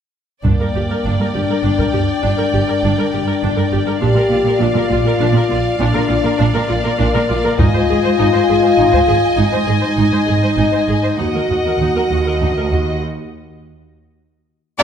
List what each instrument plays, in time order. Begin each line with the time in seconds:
0.44 double bass section G1, cello section G2, french horn section A#3, viola section D4, violin section D5 G5, taiko
0.60 cello section G2, viola section A#4
0.74 double bass section G1, cello section G2, viola section G4
0.90 cello section G2, viola section A#4
1.05 double bass section G1, cello section G2, viola section D4
1.19 cello section G2, viola section A#4
1.34 double bass section G1, cello section G2, french horn section D4, viola section G4
1.49 cello section G2, viola section A#4
1.63 double bass section G1, cello section G2, viola section D4
1.78 cello section G2, viola section A#4, taiko
1.93 double bass section G1, cello section G2, viola section G4
2.22 double bass section G1, cello section G2, viola section D4, french horn section D4
2.37 cello section G2, viola section A#4
2.53 double bass section G1, cello section G2, viola section G4
2.67 cello section G2, viola section A#4
2.83 double bass section G1, cello section G2, viola section D4
2.98 cello section G2, viola section A#4
3.13 double bass section G1, cello section G2, viola section G4
3.27 cello section G2, viola section A#4
3.42 double bass section G1, cello section G2, viola section D4
3.56 cello section G2, viola section A#4
3.71 double bass section G1, cello section G2, viola section G4
3.86 cello section G2, viola section A#4
4.01 double bass section A#1, cello section A#2, viola section D4, french horn section G4, violin section D5 F5
4.15 cello section A#2, viola section A#4
4.30 double bass section A#1, cello section A#2, viola section F4
4.45 cello section A#2, viola section A#4
4.60 double bass section A#1, cello section A#2, viola section D4, french horn section F4
4.74 cello section A#2, viola section A#4
4.90 double bass section A#1, cello section A#2, viola section F4
5.04 cello section A#2, viola section A#4
5.19 double bass section A#1, cello section A#2, viola section D4
5.33 cello section A#2, viola section A#4
5.49 double bass section A#1, cello section A#2, viola section F4
5.79 double bass section A#1, cello section A#2, french horn section D4, viola section D4
5.94 cello section A#2, viola section A#4
6.09 double bass section A#1, cello section A#2, viola section F4
6.23 cello section A#2, viola section A#4
6.39 double bass section A#1, cello section A#2, viola section D4
6.53 cello section A#2, viola section A#4
6.68 double bass section A#1, cello section A#2, french horn section A#3, viola section F4
6.84 cello section A#2, viola section A#4
6.98 double bass section A#1, cello section A#2, viola section D4
7.14 cello section A#2, viola section A#4
7.28 double bass section A#1, cello section A#2, viola section F4
7.44 cello section A#2, viola section A#4
7.58 double bass section G#1, cello section G#2, viola section D#4, french horn section F4, violin section D#5 G#5, taiko
7.74 cello section G#2, viola section C5
7.89 double bass section G#1, cello section G#2, viola section G#4
8.04 cello section G#2, viola section C5
8.18 double bass section G#1, cello section G#2, viola section D#4
8.33 cello section G#2, viola section C5
8.49 double bass section G#1, cello section G#2, viola section G#4
8.62 cello section G#2, viola section C5
8.77 double bass section G#1, cello section G#2, viola section D#4
8.92 cello section G#2, viola section C5, taiko
9.07 double bass section G#1, cello section G#2, viola section G#4
9.37 double bass section G#1, cello section G#2, viola section D#4, french horn section D#4
9.52 cello section G#2, viola section C5
9.67 double bass section G#1, cello section G#2, viola section G#4
9.81 cello section G#2, viola section C5
9.97 double bass section G#1, cello section G#2, viola section D#4
10.12 cello section G#2, viola section C5
10.27 double bass section G#1, cello section G#2, viola section G#4
10.43 cello section G#2, viola section C5
10.57 double bass section G#1, cello section G#2, viola section D#4
10.72 cello section G#2, viola section C5
10.87 double bass section G#1, cello section G#2, viola section G#4
11.03 cello section G#2, viola section C5
11.18 cello section D#2, double bass section D#2, viola section D#4, french horn section F#4, violin section D#5 F#5
11.35 cello section D#2, viola section A#4
11.50 cello section D#2, double bass section D#2, viola section F#4
11.64 cello section D#2, viola section A#4
11.79 double bass section D#2, cello section D#2, viola section D#4
11.95 cello section D#2, viola section A#4
12.10 cello section D#2, double bass section D#2, viola section F#4
12.26 viola section A#4
12.40 cello section D2, double bass section D#2, viola section D#4
12.58 viola section A#4
12.71 cello section D#2, double bass section D#2, viola section F#4
14.80 string section D5